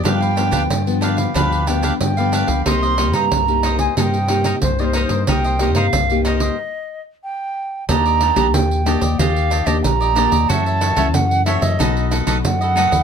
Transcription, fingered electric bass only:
0, 0, Header, 1, 2, 480
1, 0, Start_track
1, 0, Tempo, 652884
1, 32, Time_signature, 4, 2, 24, 8
1, 9580, End_track
2, 0, Start_track
2, 0, Title_t, "Fingered electric bass"
2, 0, Program_c, 0, 33
2, 31, Note_on_c, 0, 43, 93
2, 382, Note_on_c, 0, 38, 82
2, 393, Note_off_c, 0, 43, 0
2, 488, Note_off_c, 0, 38, 0
2, 513, Note_on_c, 0, 43, 92
2, 922, Note_off_c, 0, 43, 0
2, 995, Note_on_c, 0, 38, 95
2, 1404, Note_off_c, 0, 38, 0
2, 1477, Note_on_c, 0, 43, 87
2, 1783, Note_off_c, 0, 43, 0
2, 1827, Note_on_c, 0, 37, 88
2, 1933, Note_off_c, 0, 37, 0
2, 1957, Note_on_c, 0, 36, 95
2, 2306, Note_off_c, 0, 36, 0
2, 2306, Note_on_c, 0, 43, 81
2, 2413, Note_off_c, 0, 43, 0
2, 2439, Note_on_c, 0, 36, 93
2, 2847, Note_off_c, 0, 36, 0
2, 2919, Note_on_c, 0, 43, 91
2, 3327, Note_off_c, 0, 43, 0
2, 3400, Note_on_c, 0, 36, 93
2, 3706, Note_off_c, 0, 36, 0
2, 3749, Note_on_c, 0, 43, 88
2, 3855, Note_off_c, 0, 43, 0
2, 3884, Note_on_c, 0, 36, 89
2, 4232, Note_off_c, 0, 36, 0
2, 4232, Note_on_c, 0, 43, 79
2, 4337, Note_off_c, 0, 43, 0
2, 4361, Note_on_c, 0, 36, 89
2, 4769, Note_off_c, 0, 36, 0
2, 5801, Note_on_c, 0, 39, 105
2, 6105, Note_off_c, 0, 39, 0
2, 6150, Note_on_c, 0, 34, 85
2, 6281, Note_off_c, 0, 34, 0
2, 6281, Note_on_c, 0, 39, 98
2, 6585, Note_off_c, 0, 39, 0
2, 6629, Note_on_c, 0, 39, 88
2, 6734, Note_off_c, 0, 39, 0
2, 6757, Note_on_c, 0, 39, 103
2, 7063, Note_off_c, 0, 39, 0
2, 7105, Note_on_c, 0, 39, 77
2, 7212, Note_off_c, 0, 39, 0
2, 7238, Note_on_c, 0, 34, 93
2, 7543, Note_off_c, 0, 34, 0
2, 7588, Note_on_c, 0, 39, 91
2, 7693, Note_off_c, 0, 39, 0
2, 7718, Note_on_c, 0, 42, 110
2, 8022, Note_off_c, 0, 42, 0
2, 8065, Note_on_c, 0, 37, 82
2, 8195, Note_off_c, 0, 37, 0
2, 8195, Note_on_c, 0, 42, 102
2, 8500, Note_off_c, 0, 42, 0
2, 8544, Note_on_c, 0, 42, 93
2, 8649, Note_off_c, 0, 42, 0
2, 8674, Note_on_c, 0, 35, 99
2, 8978, Note_off_c, 0, 35, 0
2, 9021, Note_on_c, 0, 35, 77
2, 9127, Note_off_c, 0, 35, 0
2, 9153, Note_on_c, 0, 42, 98
2, 9457, Note_off_c, 0, 42, 0
2, 9499, Note_on_c, 0, 39, 93
2, 9580, Note_off_c, 0, 39, 0
2, 9580, End_track
0, 0, End_of_file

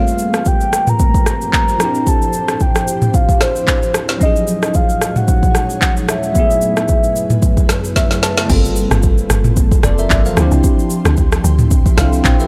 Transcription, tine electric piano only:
0, 0, Header, 1, 2, 480
1, 0, Start_track
1, 0, Tempo, 535714
1, 1852, Time_signature, 4, 2, 24, 8
1, 11174, End_track
2, 0, Start_track
2, 0, Title_t, "Tine electric piano"
2, 0, Program_c, 0, 4
2, 0, Note_on_c, 0, 55, 67
2, 0, Note_on_c, 0, 57, 76
2, 0, Note_on_c, 0, 58, 62
2, 0, Note_on_c, 0, 60, 62
2, 0, Note_on_c, 0, 65, 65
2, 111, Control_c, 0, 64, 127
2, 1564, Note_off_c, 0, 55, 0
2, 1573, Note_off_c, 0, 58, 0
2, 1581, Note_off_c, 0, 60, 0
2, 1588, Note_on_c, 0, 53, 68
2, 1590, Note_off_c, 0, 65, 0
2, 1598, Note_off_c, 0, 57, 0
2, 1604, Note_on_c, 0, 60, 62
2, 1621, Note_on_c, 0, 62, 61
2, 1624, Control_c, 0, 64, 0
2, 1637, Note_on_c, 0, 64, 59
2, 1654, Note_on_c, 0, 67, 72
2, 1790, Control_c, 0, 64, 127
2, 3484, Note_off_c, 0, 53, 0
2, 3492, Note_off_c, 0, 60, 0
2, 3501, Note_off_c, 0, 62, 0
2, 3509, Note_off_c, 0, 64, 0
2, 3517, Note_off_c, 0, 67, 0
2, 3747, Note_on_c, 0, 54, 66
2, 3764, Note_on_c, 0, 61, 64
2, 3780, Note_on_c, 0, 63, 61
2, 3783, Control_c, 0, 64, 0
2, 3797, Note_on_c, 0, 53, 64
2, 3812, Note_on_c, 0, 68, 76
2, 3947, Control_c, 0, 64, 127
2, 5644, Note_off_c, 0, 54, 0
2, 5652, Note_off_c, 0, 61, 0
2, 5660, Note_off_c, 0, 63, 0
2, 5666, Note_on_c, 0, 54, 67
2, 5669, Note_off_c, 0, 53, 0
2, 5676, Note_off_c, 0, 68, 0
2, 5683, Note_on_c, 0, 57, 63
2, 5699, Note_on_c, 0, 59, 64
2, 5705, Control_c, 0, 64, 0
2, 5716, Note_on_c, 0, 64, 63
2, 5731, Note_on_c, 0, 68, 73
2, 5875, Control_c, 0, 64, 127
2, 7137, Note_on_c, 0, 76, 73
2, 7358, Note_off_c, 0, 76, 0
2, 7376, Note_on_c, 0, 81, 72
2, 7563, Note_off_c, 0, 54, 0
2, 7571, Note_off_c, 0, 57, 0
2, 7580, Note_off_c, 0, 59, 0
2, 7584, Note_on_c, 0, 55, 83
2, 7588, Note_off_c, 0, 64, 0
2, 7596, Note_off_c, 0, 68, 0
2, 7597, Note_off_c, 0, 81, 0
2, 7601, Note_on_c, 0, 58, 78
2, 7617, Note_on_c, 0, 60, 78
2, 7623, Control_c, 0, 64, 0
2, 7632, Note_on_c, 0, 65, 76
2, 7650, Note_on_c, 0, 69, 90
2, 7754, Control_c, 0, 64, 127
2, 8807, Note_off_c, 0, 69, 0
2, 8818, Note_on_c, 0, 74, 69
2, 8823, Note_on_c, 0, 69, 58
2, 8941, Note_off_c, 0, 74, 0
2, 8943, Note_off_c, 0, 69, 0
2, 8951, Note_on_c, 0, 76, 75
2, 8955, Note_on_c, 0, 70, 66
2, 9175, Note_off_c, 0, 76, 0
2, 9178, Note_off_c, 0, 70, 0
2, 9192, Note_on_c, 0, 77, 68
2, 9198, Note_on_c, 0, 72, 58
2, 9244, Note_off_c, 0, 55, 0
2, 9253, Note_off_c, 0, 58, 0
2, 9261, Note_off_c, 0, 60, 0
2, 9268, Note_on_c, 0, 53, 82
2, 9269, Note_off_c, 0, 65, 0
2, 9285, Note_on_c, 0, 60, 80
2, 9301, Note_on_c, 0, 62, 79
2, 9305, Control_c, 0, 64, 0
2, 9317, Note_on_c, 0, 64, 76
2, 9334, Note_on_c, 0, 67, 89
2, 9416, Note_off_c, 0, 77, 0
2, 9419, Note_off_c, 0, 72, 0
2, 9458, Control_c, 0, 64, 127
2, 10691, Note_off_c, 0, 53, 0
2, 10700, Note_off_c, 0, 60, 0
2, 10708, Note_off_c, 0, 62, 0
2, 10716, Note_off_c, 0, 64, 0
2, 10723, Note_on_c, 0, 53, 62
2, 10725, Note_off_c, 0, 67, 0
2, 10732, Note_on_c, 0, 60, 57
2, 10740, Note_on_c, 0, 62, 59
2, 10740, Note_on_c, 0, 77, 77
2, 10747, Note_on_c, 0, 64, 58
2, 10756, Note_on_c, 0, 69, 69
2, 10959, Note_off_c, 0, 77, 0
2, 10979, Note_on_c, 0, 72, 66
2, 10980, Note_on_c, 0, 79, 74
2, 10984, Note_off_c, 0, 69, 0
2, 10985, Note_on_c, 0, 67, 56
2, 11101, Note_off_c, 0, 72, 0
2, 11104, Note_off_c, 0, 67, 0
2, 11112, Note_on_c, 0, 76, 75
2, 11118, Note_on_c, 0, 71, 60
2, 11174, Note_off_c, 0, 53, 0
2, 11174, Note_off_c, 0, 60, 0
2, 11174, Note_off_c, 0, 62, 0
2, 11174, Note_off_c, 0, 64, 0
2, 11174, Note_off_c, 0, 71, 0
2, 11174, Note_off_c, 0, 76, 0
2, 11174, Note_off_c, 0, 79, 0
2, 11174, End_track
0, 0, End_of_file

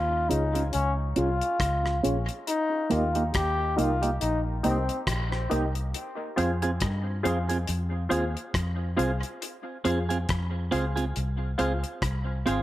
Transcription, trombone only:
0, 0, Header, 1, 2, 480
1, 0, Start_track
1, 0, Key_signature, -4, "minor"
1, 0, Tempo, 868307
1, 1365, Time_signature, 4, 2, 24, 8
1, 6980, End_track
2, 0, Start_track
2, 0, Title_t, "Trombone"
2, 0, Program_c, 0, 57
2, 0, Note_on_c, 0, 65, 89
2, 160, Note_on_c, 0, 63, 79
2, 168, Note_off_c, 0, 65, 0
2, 354, Note_off_c, 0, 63, 0
2, 401, Note_on_c, 0, 61, 95
2, 511, Note_off_c, 0, 61, 0
2, 643, Note_on_c, 0, 65, 84
2, 1102, Note_off_c, 0, 65, 0
2, 1368, Note_on_c, 0, 63, 100
2, 1610, Note_on_c, 0, 65, 84
2, 1618, Note_off_c, 0, 63, 0
2, 1800, Note_off_c, 0, 65, 0
2, 1840, Note_on_c, 0, 67, 91
2, 2086, Note_on_c, 0, 65, 82
2, 2094, Note_off_c, 0, 67, 0
2, 2277, Note_off_c, 0, 65, 0
2, 2325, Note_on_c, 0, 63, 91
2, 2433, Note_off_c, 0, 63, 0
2, 2573, Note_on_c, 0, 60, 80
2, 2761, Note_off_c, 0, 60, 0
2, 6980, End_track
0, 0, End_of_file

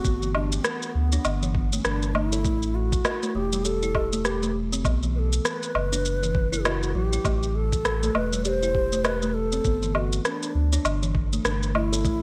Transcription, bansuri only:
0, 0, Header, 1, 2, 480
1, 0, Start_track
1, 0, Tempo, 600000
1, 38, Time_signature, 4, 2, 24, 8
1, 9778, End_track
2, 0, Start_track
2, 0, Title_t, "Bansuri"
2, 0, Program_c, 0, 73
2, 0, Note_on_c, 0, 66, 106
2, 272, Note_off_c, 0, 66, 0
2, 277, Note_on_c, 0, 62, 88
2, 516, Note_on_c, 0, 59, 101
2, 528, Note_off_c, 0, 62, 0
2, 1476, Note_on_c, 0, 62, 93
2, 1488, Note_off_c, 0, 59, 0
2, 1717, Note_on_c, 0, 64, 102
2, 1729, Note_off_c, 0, 62, 0
2, 2200, Note_on_c, 0, 66, 97
2, 2212, Note_off_c, 0, 64, 0
2, 2680, Note_on_c, 0, 67, 98
2, 2692, Note_off_c, 0, 66, 0
2, 2917, Note_on_c, 0, 69, 104
2, 2929, Note_off_c, 0, 67, 0
2, 3403, Note_on_c, 0, 67, 86
2, 3415, Note_off_c, 0, 69, 0
2, 3641, Note_off_c, 0, 67, 0
2, 4120, Note_on_c, 0, 71, 81
2, 4153, Note_on_c, 0, 69, 88
2, 4161, Note_off_c, 0, 71, 0
2, 4361, Note_on_c, 0, 71, 102
2, 4373, Note_off_c, 0, 69, 0
2, 5320, Note_on_c, 0, 66, 91
2, 5332, Note_off_c, 0, 71, 0
2, 5555, Note_on_c, 0, 67, 95
2, 5567, Note_off_c, 0, 66, 0
2, 6041, Note_on_c, 0, 69, 101
2, 6053, Note_off_c, 0, 67, 0
2, 6521, Note_on_c, 0, 71, 107
2, 6533, Note_off_c, 0, 69, 0
2, 6750, Note_off_c, 0, 71, 0
2, 6755, Note_on_c, 0, 74, 108
2, 6787, Note_on_c, 0, 72, 118
2, 6795, Note_off_c, 0, 74, 0
2, 7233, Note_on_c, 0, 71, 110
2, 7245, Note_off_c, 0, 72, 0
2, 7472, Note_on_c, 0, 69, 109
2, 7484, Note_off_c, 0, 71, 0
2, 7956, Note_on_c, 0, 67, 84
2, 7968, Note_off_c, 0, 69, 0
2, 7986, Note_on_c, 0, 66, 91
2, 7994, Note_off_c, 0, 67, 0
2, 8192, Note_off_c, 0, 66, 0
2, 8197, Note_on_c, 0, 62, 90
2, 8914, Note_off_c, 0, 62, 0
2, 9156, Note_on_c, 0, 62, 93
2, 9210, Note_off_c, 0, 62, 0
2, 9395, Note_on_c, 0, 64, 107
2, 9778, Note_off_c, 0, 64, 0
2, 9778, End_track
0, 0, End_of_file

